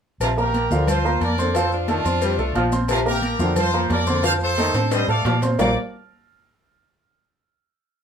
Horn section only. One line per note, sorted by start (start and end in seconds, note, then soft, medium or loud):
0.22 0.29 F4 medium
0.22 0.29 A#4 medium
0.39 0.85 G4 medium
0.39 0.85 A#4 medium
0.90 1.20 F4 medium
0.90 1.20 C5 medium
1.23 1.53 A#4 medium
1.23 1.53 D5 medium
1.56 1.73 A4 medium
1.56 1.73 C5 medium
1.73 2.69 D4 medium
1.73 2.69 F4 medium
2.91 2.98 F4 medium
2.91 2.98 A#4 loud
3.08 3.54 G4 medium
3.08 3.54 A#4 loud
3.57 3.88 F4 medium
3.57 3.89 C5 loud
3.92 4.25 A#4 medium
3.92 4.25 D5 loud
4.26 4.33 C5 medium
4.26 4.33 F5 loud
4.42 4.89 A4 medium
4.42 4.89 C5 loud
4.93 5.09 C5 medium
4.93 5.10 D#5 loud
5.09 5.40 D5 medium
5.09 5.40 F5 medium
5.60 5.75 D5 medium